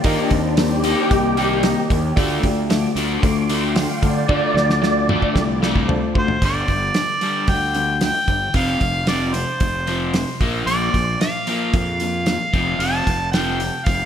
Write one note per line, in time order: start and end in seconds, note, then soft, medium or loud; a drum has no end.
0.04 0.15 D#3 loud
0.04 0.30 D#3 medium
0.04 0.30 A#3 loud
0.04 0.30 D#4 loud
0.04 0.47 G4 loud
0.04 0.47 A#4 medium
0.04 0.47 D#5 loud
0.04 kick loud
0.04 open hi-hat medium
0.31 0.93 D#2 loud
0.31 0.55 D#3 medium
0.31 0.55 A#3 medium
0.31 kick medium
0.31 open hi-hat medium
0.57 0.82 D#3 medium
0.57 0.82 A#3 medium
0.57 1.00 G4 medium
0.57 2.13 G4 loud
0.57 1.00 A#4 medium
0.57 1.00 D#5 medium
0.57 snare loud
0.57 open hi-hat medium
0.84 1.09 D#3 medium
0.84 1.09 A#3 medium
0.84 1.10 D#4 loud
0.84 open hi-hat medium
1.11 1.73 C2 loud
1.11 1.35 D#3 medium
1.11 1.35 A#3 medium
1.11 1.53 G4 medium
1.11 1.53 A#4 medium
1.11 1.54 D#5 medium
1.11 kick loud
1.11 open hi-hat medium
1.37 1.62 D#3 medium
1.37 1.63 A#3 medium
1.37 1.63 D#4 loud
1.37 open hi-hat medium
1.63 1.88 D#3 medium
1.63 1.88 A#3 medium
1.63 2.06 G4 medium
1.63 2.06 A#4 medium
1.63 2.06 D#5 loud
1.63 snare loud
1.63 open hi-hat medium
1.90 2.11 D#2 medium
1.90 2.14 D#3 medium
1.90 2.15 A#3 medium
1.90 kick medium
1.90 open hi-hat medium
2.16 2.38 D2 loud
2.16 2.42 D3 medium
2.16 2.42 A3 medium
2.16 2.42 D4 loud
2.16 2.59 F4 loud
2.16 2.59 A4 loud
2.16 2.59 D5 loud
2.16 kick loud
2.16 open hi-hat medium
2.43 2.85 D2 medium
2.43 2.67 D3 medium
2.43 2.68 A3 medium
2.43 kick medium
2.43 open hi-hat medium
2.70 2.94 D3 medium
2.70 2.94 A3 medium
2.70 3.12 F4 medium
2.70 3.12 A4 medium
2.70 3.12 D5 medium
2.70 snare loud
2.70 open hi-hat medium
2.95 3.17 D2 medium
2.95 3.21 D3 loud
2.95 3.22 A3 medium
2.95 3.22 D4 loud
2.95 open hi-hat medium
3.22 3.85 D2 loud
3.22 3.47 D3 medium
3.22 3.47 A3 medium
3.22 3.66 F4 medium
3.22 3.66 A4 medium
3.22 3.66 D5 medium
3.22 kick loud
3.22 open hi-hat medium
3.49 3.74 D3 medium
3.49 3.75 A3 medium
3.49 3.75 D4 medium
3.49 open hi-hat medium
3.76 4.00 D3 medium
3.76 4.00 A3 medium
3.76 4.19 F4 medium
3.76 4.18 A4 medium
3.76 4.19 D5 medium
3.76 snare loud
3.76 open hi-hat medium
3.94 5.49 D5 loud
4.02 4.26 D3 medium
4.02 4.23 D3 medium
4.02 4.27 A3 medium
4.02 kick medium
4.02 open hi-hat medium
4.28 4.54 D3 medium
4.28 4.40 D3 loud
4.28 4.54 A3 medium
4.28 4.54 D4 loud
4.28 4.71 F4 loud
4.28 4.71 A4 loud
4.28 4.71 D5 loud
4.28 kick loud
4.54 5.17 D2 loud
4.54 4.79 D3 medium
4.54 4.80 A3 medium
4.54 snare medium
4.70 snare medium
4.82 5.06 D3 medium
4.82 5.06 A3 medium
4.82 5.25 F4 medium
4.82 5.25 A4 medium
4.82 5.07 D5 loud
4.82 snare medium
5.08 5.34 D3 medium
5.08 5.34 A3 loud
5.08 5.34 D4 loud
5.08 5.33 D5 medium
5.08 mid tom medium
5.22 kick medium
5.34 5.97 C2 loud
5.34 5.59 D3 medium
5.34 5.60 A3 medium
5.34 5.77 F4 medium
5.34 5.77 A4 medium
5.34 5.77 D5 loud
5.34 5.59 G5 medium
5.34 kick loud
5.34 snare medium
5.60 5.87 D3 medium
5.60 5.87 A3 loud
5.60 5.88 D4 loud
5.60 5.86 F5 medium
5.60 snare medium
5.76 kick medium
5.88 6.13 D3 medium
5.88 6.13 A3 medium
5.88 6.31 F4 loud
5.88 6.31 A4 medium
5.88 6.31 C5 loud
5.88 6.13 A5 medium
5.88 floor tom loud
6.14 6.36 D2 medium
6.14 6.39 D3 medium
6.14 6.39 A3 medium
6.14 6.41 C5 loud
6.14 6.39 C6 medium
6.14 kick loud
6.28 floor tom medium
6.42 6.62 G1 medium
6.42 6.67 G2 medium
6.42 6.67 D3 medium
6.42 6.68 G3 medium
6.42 7.46 D5 loud
6.42 kick loud
6.42 open hi-hat medium
6.68 6.89 G1 loud
6.68 6.93 G2 medium
6.68 6.93 D3 medium
6.68 kick medium
6.68 open hi-hat soft
6.94 7.19 G2 medium
6.94 7.19 D3 medium
6.94 snare loud
6.94 open hi-hat medium
7.21 7.47 G2 medium
7.21 7.47 D3 medium
7.21 7.47 G3 medium
7.21 open hi-hat medium
7.48 8.10 D2 loud
7.48 7.72 G2 medium
7.48 7.72 D3 medium
7.48 7.98 G5 loud
7.48 kick loud
7.48 open hi-hat medium
7.74 7.99 G2 medium
7.74 7.99 D3 medium
7.74 open hi-hat medium
8.01 8.26 G2 medium
8.01 8.26 D3 medium
8.01 8.52 G5 loud
8.01 snare loud
8.01 open hi-hat medium
8.28 8.49 G1 medium
8.28 8.52 G2 medium
8.28 8.52 D3 medium
8.28 kick medium
8.28 open hi-hat medium
8.54 8.75 F1 medium
8.54 8.79 F2 medium
8.54 8.80 C3 medium
8.54 8.80 F3 medium
8.54 9.05 F5 loud
8.54 kick loud
8.54 open hi-hat medium
8.81 9.43 F1 medium
8.81 9.05 F2 medium
8.81 9.05 C3 medium
8.81 kick medium
8.81 open hi-hat medium
9.07 9.32 F2 medium
9.07 9.33 C3 medium
9.07 9.33 F3 loud
9.07 9.35 D5 medium
9.07 snare loud
9.07 open hi-hat medium
9.34 9.58 F2 medium
9.34 9.58 C3 medium
9.34 10.40 C5 medium
9.34 open hi-hat medium
9.60 10.23 F1 medium
9.60 9.85 F2 medium
9.60 9.85 C3 medium
9.60 kick loud
9.60 open hi-hat medium
9.87 10.12 F2 medium
9.87 10.12 C3 medium
9.87 10.13 F3 medium
9.87 open hi-hat medium
10.14 10.38 F2 medium
10.14 10.39 C3 medium
10.14 snare loud
10.14 open hi-hat medium
10.40 10.61 A#1 medium
10.40 10.66 A#2 medium
10.40 10.66 F3 medium
10.40 10.66 A#3 loud
10.40 kick medium
10.40 open hi-hat medium
10.67 10.88 A#1 medium
10.67 10.92 A#2 medium
10.67 10.92 F3 medium
10.67 10.93 A#3 medium
10.67 11.16 D5 loud
10.67 open hi-hat medium
10.94 11.15 A#1 loud
10.94 11.18 A#2 medium
10.94 11.18 F3 medium
10.94 kick medium
10.94 open hi-hat soft
11.21 11.44 A#2 medium
11.21 11.45 F3 medium
11.21 11.70 F5 medium
11.21 snare loud
11.21 open hi-hat medium
11.47 11.72 A#2 medium
11.47 11.72 F3 medium
11.47 11.73 A#3 loud
11.47 open hi-hat medium
11.73 12.36 F2 loud
11.73 11.98 A#2 medium
11.73 11.98 F3 medium
11.73 12.81 F5 medium
11.73 kick loud
11.73 open hi-hat medium
12.00 12.25 A#2 medium
12.00 12.25 F3 medium
12.00 open hi-hat medium
12.26 12.51 A#2 medium
12.26 12.51 F3 medium
12.26 snare loud
12.26 open hi-hat medium
12.53 12.74 F1 medium
12.53 12.78 F2 medium
12.53 12.79 C3 medium
12.53 12.79 F3 medium
12.53 kick medium
12.53 open hi-hat soft
12.79 13.00 F1 medium
12.79 13.05 F2 medium
12.79 13.05 C3 medium
12.79 13.05 F3 loud
12.79 13.31 A5 loud
12.79 open hi-hat medium
13.07 13.69 F1 medium
13.07 13.31 F2 medium
13.07 13.31 C3 medium
13.07 kick medium
13.07 open hi-hat medium
13.32 13.58 F2 medium
13.32 13.59 C3 medium
13.32 13.59 F3 loud
13.32 13.86 G5 medium
13.32 snare loud
13.32 open hi-hat medium
13.60 13.84 F2 medium
13.60 13.84 C3 medium
13.60 open hi-hat medium
13.85 14.05 F1 loud
13.85 14.05 F2 medium
13.85 14.05 C3 medium
13.85 14.05 F5 medium
13.85 kick loud
13.85 open hi-hat medium